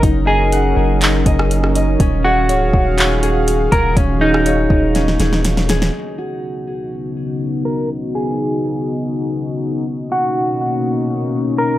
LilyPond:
<<
  \new Staff \with { instrumentName = "Clean electric guitar" } { \time 4/4 \key des \mixolydian \tempo 4 = 122 r8 aes'2.~ aes'8 | r8 ges'2. bes'8 | r8 ees'2~ ees'8 r4 | r8 ges'2. bes'8 |
r8 aes'2.~ aes'8 | r8 fis'2. ais'8 | }
  \new Staff \with { instrumentName = "Harp" } { \time 4/4 \key des \mixolydian <ees' ees''>8 ees''8 ges''4 ees'8 ees''4 ees''8 | des'8 aes'8 des''4 des'8 aes'4 aes'8 | des'8 aes'8 des''4 des'8 aes'4 aes'8 | r1 |
r1 | r1 | }
  \new Staff \with { instrumentName = "Analog synth pad" } { \time 4/4 \key des \mixolydian <ges des' ees' bes'>1 | <ees ges' aes' f''>1~ | <ees ges' aes' f''>1 | <des ces' ees' ges'>1~ |
<des ces' ees' ges'>1 | <b, ais cis' dis'>1 | }
  \new Staff \with { instrumentName = "808-style bass" } { \clef bass \time 4/4 \key des \mixolydian ges,,4. ges,,4 ges,,4. | ees,,4 des,,16 ees,,16 ees,,2 ees,,8 | ees,,4. ees,,4 ees,,4. | r1 |
r1 | r1 | }
  \new DrumStaff \with { instrumentName = "Drums" } \drummode { \time 4/4 <hh bd>4 hh4 <hc hh>8 <hh bd>16 ss16 hh16 ss16 hh8 | <hh bd>4 hh8 bd8 <hc hh>8 hh8 hh8 <hh bd>8 | <hh bd>8. ss16 hh8 bd8 <hh sn>16 sn16 <hh sn>16 sn16 <hh sn>16 sn16 <hh sn>16 sn16 | r4 r4 r4 r4 |
r4 r4 r4 r4 | r4 r4 r4 r4 | }
>>